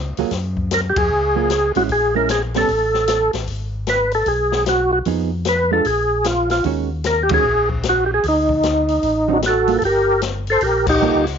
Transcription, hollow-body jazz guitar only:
0.19 F#3 A#3 F4 G#4
1.36 F#3 A#3 F4 G#4
1.76 G#3 C#4 E4
2.15 G#3 C#4 E4
2.56 G3 B3 C#4
5.06 F3 B3 D#4 G#4
5.71 G#3 D4 F4
6.65 D#3 G#3 C#4 F#4
7.31 D#3 G#3 C#4 F#4
9.28 D3 F#3 C4 D#4
9.68 G3 A#3 F4 A4
11.02 G3 A#3 F4 A4

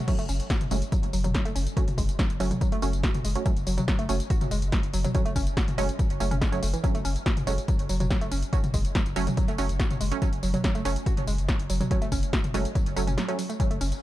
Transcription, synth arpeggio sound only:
0.08 F#3
0.19 A3
0.29 C#4
0.50 F#4
0.71 G#3
0.92 F#3
1.13 F#3
1.24 F#3
1.34 F#3
1.45 A3
1.55 C#4
1.77 F#4
1.98 G#3
2.19 F#3
2.40 F#3
2.51 F#3
2.61 F#3
2.72 A3
2.82 C#4
3.04 F#4
3.25 G#3
3.46 F#3
3.67 F#3
3.78 F#3
3.88 F#3
3.99 A3
4.09 C#4
4.30 F#4
4.51 G#3
4.72 F#3
4.93 F#3
5.04 F#3
5.15 F#3
5.25 A3
5.36 C#4
5.57 F#4
5.78 G#3
5.99 F#3
6.20 A3
6.31 C#4
6.41 G#3
6.52 F#3
6.63 A3
6.74 E3
6.84 F#3
6.95 A3
7.05 C#4
7.26 F#4
7.47 G#3
7.68 F#3
7.89 F#3
8.00 F#3
8.10 F#3
8.21 A3
8.32 C#4
8.53 F#4
8.74 G#3
8.95 F#3
9.16 F#3
9.27 F#3
9.37 F#3
9.48 A3
9.58 C#4
9.80 F#4
10.01 G#3
10.22 F#3
10.43 F#3
10.54 F#3
10.64 F#3
10.75 A3
10.85 C#4
11.06 F#4
11.27 G#3
11.49 F#3
11.70 F#3
11.81 F#3
11.91 F#3
12.02 A3
12.12 C#4
12.33 F#4
12.54 G#3
12.75 F#3
12.96 F#3
13.07 C#4
13.17 F#3
13.28 F#3
13.39 F#3
13.49 A3
13.60 F#3
13.71 A3
13.81 C#4

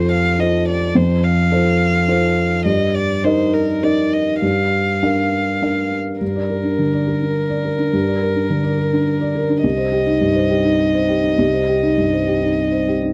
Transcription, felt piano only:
Already playing: F2 F4 A4 C5
0.39 F4 A4 C5
0.95 F2
1.51 F4 A4 C5
2.08 F4 A4 C5
2.65 G2
3.24 D#4 A#4 D#5
3.83 D#4 A#4 D#5
4.42 G2
5.02 D4 A#4 F5
5.62 D4 A#4 F5
6.21 G2
6.36 D5
6.50 A#4
6.64 D4
6.78 D3
6.93 D5
7.08 A#4
7.22 D4
7.49 D5
7.65 A#4
7.79 D4
7.93 G2
8.08 D5
8.21 A#4
8.36 D4
8.50 D3
8.64 D5
8.78 A#4
8.93 D4
9.21 D5
9.35 A#4
9.49 D4
9.64 C2
9.78 C5
9.92 G4
10.06 D#4
10.21 G2
10.35 C5
10.50 G4
10.65 D#4
10.94 C5
11.08 G4
11.24 D#4
11.38 C2
11.53 C5
11.68 G4
11.83 D#4
11.98 G2
12.12 C5
12.28 G4
12.42 D#4
12.72 C5
12.88 G4
13.02 D#4

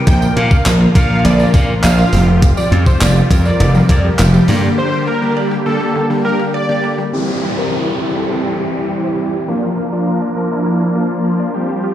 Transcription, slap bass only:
0.07 A#1
0.37 A#2
0.66 A#1
0.95 A#2
1.25 A#1
1.54 A#2
1.84 A#1
2.13 F1
2.72 F2
3.01 F1
3.31 F2
3.60 F1
3.89 F2
4.19 F1
4.48 G2

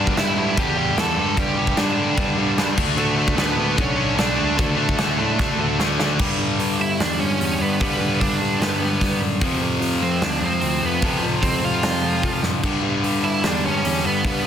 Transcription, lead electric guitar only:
Already playing: D4 D5
0.18 E4 E5
0.59 G4 G5
1.00 A4 A5
1.38 G4 G5
1.79 D4 D5
2.98 A3 A4
3.40 B3 B4
3.80 C#4 C#5
4.19 D4 D5
4.60 A3 A4
6.82 E4 E5
7.01 D4 D5
7.20 C#4 C#5
7.62 B3 B4
7.82 B3 B4
8.20 D4 D5
8.62 B3 B4
10.03 C4 C5
10.24 D4 D5
10.44 C4 C5
10.86 B3 B4
11.43 C4 C5
11.65 F4 F5
13.25 E4 E5
13.46 D4 D5
13.65 C#4 C#5
14.05 B3 B4
14.25 B3 B4

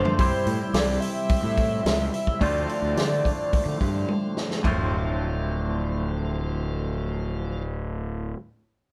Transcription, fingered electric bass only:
0.19 C2
0.46 A2
0.74 C2
1.43 A2
1.85 C#2
2.41 D2
2.82 D2
2.97 D3
3.66 D3
3.81 G2
4.65 D1

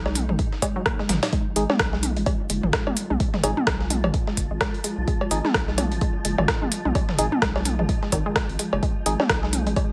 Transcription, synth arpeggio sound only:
0.06 G#3
0.29 G#3
0.62 G#3
0.76 F#3
0.86 A#3
0.99 G#3
1.09 F#3
1.23 D#4
1.33 G#3
1.56 G#3
1.70 G#3
1.93 G#3
2.17 G#3
2.26 G#3
2.50 G#3
2.73 G#3
2.87 G#3
3.10 G#3
3.34 G#3
3.44 G#3
3.67 G#3
3.90 G#3
4.04 G#3
4.27 G#3
4.51 G#3
4.61 G#3
4.84 G#3
5.07 G#3
5.21 G#3
5.45 G#3
5.68 G#3
5.78 G#3
6.01 G#3
6.25 G#3
6.38 G#3
6.62 G#3
6.85 G#3
6.95 G#3
7.19 G#3
7.42 G#3
7.56 G#3
7.79 G#3
8.03 G#3
8.12 D#3
8.26 G#3
8.36 G#3
8.59 G#3
8.73 G#3
8.83 G#3
9.06 G#3
9.20 G#3
9.43 G#3
9.67 G#3
9.76 G#3

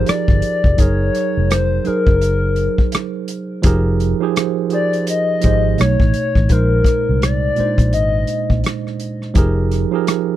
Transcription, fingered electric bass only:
0.29 G1
0.65 F1
0.80 F#1
1.37 F1
1.88 muted fingered electric bass stroke
2.07 F#1
3.65 F1
5.45 G#1
5.80 B1
6.01 A1
6.37 A1
6.51 A#1
7.09 C2
7.59 muted fingered electric bass stroke
7.79 A#1
7.94 G#1
8.51 A#1
9.37 F1

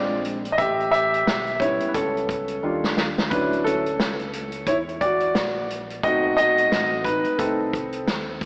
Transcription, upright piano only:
Already playing: G#3 C4 D4 F4 D5
0.52 D#5
0.58 G4 E5
0.91 G4 E5
1.60 G3 B3 C#4 E4 C#5
1.89 B4
1.94 C#4 A4
2.63 G3 D4 F4
3.30 F#3 C#4 D4 E4 B4
3.64 C#4 A4
4.67 E4 C#5
5.01 F#4 D5
6.03 A3 C4 D#4 F#4 D#5
6.37 F#4 D#5
7.05 D#4 B4
7.38 A3 C4 D#4 A4

